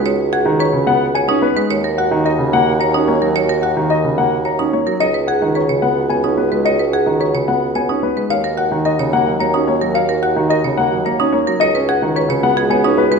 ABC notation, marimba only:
X:1
M:3/4
L:1/16
Q:1/4=109
K:Ebm
V:1 name="Marimba"
d z A z c z3 d E z c | d B G z B z3 d E z B | d B G z B z3 d E z B | d c A z c d z2 d E z c |
d c A z c d z2 d E z c | d B G z B d z2 d E z B | d B G z B d z2 d E z B | d c A z c d z A d E z c |]